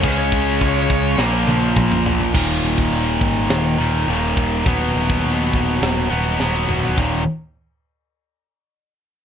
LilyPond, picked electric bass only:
\new Staff \with { instrumentName = "Picked electric bass" } { \clef bass \time 4/4 \key ees \minor \tempo 4 = 104 des,4 des,8 des,8 bes,,8 bes,,8 bes,,8 bes,,8 | ees,,8 ees,,8 ees,,8 aes,,8 ees,,8 ees,,8 ees,,8 ees,,8 | dis,,8 dis,,8 dis,,8 dis,,8 dis,,8 dis,,8 dis,,8 dis,,8 | ees,,8 r2. r8 | }